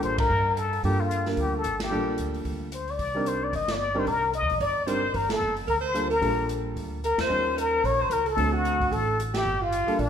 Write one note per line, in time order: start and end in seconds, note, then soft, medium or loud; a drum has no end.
0.00 0.28 A1 medium
0.00 0.27 G3 medium
0.00 0.27 A#3 medium
0.00 0.27 D4 medium
0.00 0.27 F4 medium
0.00 0.28 A4 medium
0.00 0.18 C5 medium
0.00 closed hi-hat soft
0.18 0.59 A#4 medium
0.18 kick medium
0.18 ride medium
0.30 0.81 G2 medium
0.57 0.84 A4 medium
0.57 closed hi-hat medium
0.73 open hi-hat soft
0.83 1.35 G2 medium
0.83 1.23 G3 medium
0.83 1.23 A#3 medium
0.83 1.23 D4 medium
0.83 1.24 F4 medium
0.83 1.01 G4 medium
0.83 1.24 A4 medium
0.83 kick soft
0.83 open hi-hat soft
1.00 1.26 F4 medium
1.11 closed hi-hat soft
1.26 1.62 G3 medium
1.26 1.62 A#3 medium
1.26 1.62 D4 medium
1.26 1.63 F4 medium
1.26 1.63 A#4 medium
1.26 snare soft
1.26 open hi-hat soft
1.37 1.62 D2 medium
1.37 kick soft
1.37 open hi-hat soft
1.41 1.54 G4 medium
1.57 1.80 A4 medium
1.64 1.90 G#1 medium
1.64 closed hi-hat medium
1.80 2.17 G4 medium
1.80 snare medium
1.80 ride medium
1.91 2.17 A#1 medium
1.91 2.65 G3 medium
1.91 2.65 A#3 medium
1.91 2.65 D4 medium
1.91 2.65 F4 medium
1.91 2.66 A4 medium
2.18 2.44 D2 medium
2.18 closed hi-hat soft
2.34 open hi-hat soft
2.45 2.96 D2 medium
2.45 kick soft
2.45 open hi-hat soft
2.72 2.92 C5 medium
2.72 closed hi-hat medium
2.88 3.30 D5 loud
2.88 open hi-hat soft
2.99 3.50 C2 medium
2.99 kick soft
2.99 open hi-hat soft
3.15 3.51 G3 medium
3.15 3.51 C4 medium
3.15 3.51 D4 medium
3.15 3.51 D#4 medium
3.15 3.51 A#4 medium
3.26 3.45 C5 medium
3.26 closed hi-hat soft
3.44 3.54 D5 medium
3.53 4.04 G1 medium
3.53 3.73 D#5 medium
3.53 kick soft
3.53 open hi-hat soft
3.68 4.01 D5 medium
3.68 snare medium
3.68 ride medium
3.94 4.05 G3 medium
3.94 4.05 C4 medium
3.94 4.06 D4 medium
3.94 4.06 D#4 medium
3.94 4.06 A#4 medium
3.99 4.07 C5 medium
4.07 4.40 C2 medium
4.07 4.32 A#4 medium
4.07 kick soft
4.07 open hi-hat soft
4.33 4.59 D#5 medium
4.33 closed hi-hat soft
4.42 4.51 D#2 medium
4.50 4.60 A#1 medium
4.50 open hi-hat soft
4.60 5.12 G1 medium
4.60 4.88 D5 medium
4.60 kick soft
4.60 open hi-hat soft
4.87 5.01 G3 medium
4.87 5.01 C4 medium
4.87 5.01 D4 medium
4.87 5.02 D#4 medium
4.87 5.02 A#4 medium
4.87 5.17 C5 medium
4.87 5.16 C5 medium
4.87 closed hi-hat medium
5.14 5.39 G1 medium
5.14 5.28 A#4 medium
5.14 5.31 A#4 medium
5.14 kick soft
5.14 open hi-hat soft
5.29 5.54 A4 medium
5.29 5.56 A4 medium
5.29 snare medium
5.29 ride medium
5.42 5.67 F#1 medium
5.57 open hi-hat soft
5.67 6.19 D2 medium
5.67 5.75 A#4 medium
5.67 5.77 A#4 medium
5.67 kick soft
5.67 open hi-hat soft
5.81 6.07 C5 medium
5.87 6.11 C5 medium
5.94 6.09 G3 medium
5.94 6.09 A#3 medium
5.94 6.09 D4 medium
5.94 6.09 F4 medium
5.94 6.09 A4 medium
5.94 closed hi-hat medium
6.10 6.46 A#4 medium
6.10 6.47 A#4 medium
6.10 open hi-hat soft
6.21 6.73 A#1 medium
6.21 6.96 G3 medium
6.21 6.96 A#3 medium
6.21 6.96 D4 medium
6.21 6.96 F4 medium
6.21 6.96 A4 medium
6.21 kick soft
6.21 open hi-hat soft
6.49 closed hi-hat medium
6.76 7.16 D2 medium
6.76 kick soft
6.76 open hi-hat soft
7.04 7.18 A#4 medium
7.04 7.19 A#4 medium
7.04 closed hi-hat medium
7.18 7.29 E2 medium
7.18 7.59 C5 medium
7.18 7.61 C5 loud
7.18 snare medium
7.18 ride medium
7.29 7.81 D#2 medium
7.29 8.03 G3 medium
7.29 8.04 C#4 medium
7.29 8.04 D#4 soft
7.29 8.04 F4 soft
7.29 8.05 A#4 medium
7.57 7.87 A#4 medium
7.57 closed hi-hat medium
7.84 8.09 A#1 medium
7.84 8.01 C#5 medium
7.84 8.04 C#5 loud
7.84 kick soft
7.84 open hi-hat soft
8.00 8.12 C5 medium
8.00 8.14 C5 medium
8.10 8.35 C#2 medium
8.10 8.25 A#4 medium
8.10 8.27 A#4 medium
8.10 closed hi-hat medium
8.26 8.54 A4 medium
8.26 8.56 A4 loud
8.26 open hi-hat soft
8.37 8.89 D2 medium
8.37 9.11 A3 medium
8.37 9.11 C4 medium
8.37 9.12 D4 medium
8.37 9.12 F#4 medium
8.37 9.12 A4 medium
8.37 kick soft
8.37 open hi-hat soft
8.53 8.93 F#4 medium
8.53 8.94 F#4 medium
8.65 closed hi-hat medium
8.80 kick soft
8.80 open hi-hat soft
8.92 9.43 A1 medium
8.92 9.19 A4 medium
8.92 kick soft
8.92 open hi-hat soft
9.20 closed hi-hat medium
9.34 9.63 G4 medium
9.34 9.65 G4 medium
9.34 snare medium
9.34 ride medium
9.45 9.85 G1 medium
9.61 10.01 F4 medium
9.61 10.02 F4 medium
9.72 closed hi-hat medium
9.87 9.97 G3 medium
9.87 9.98 A#3 medium
9.87 9.98 D4 medium
9.87 9.98 F4 medium
9.87 9.98 A4 medium
9.87 muted upright bass stroke soft
9.87 open hi-hat soft
9.99 10.10 A#1 medium
9.99 10.10 D4 medium
9.99 kick soft
9.99 open hi-hat soft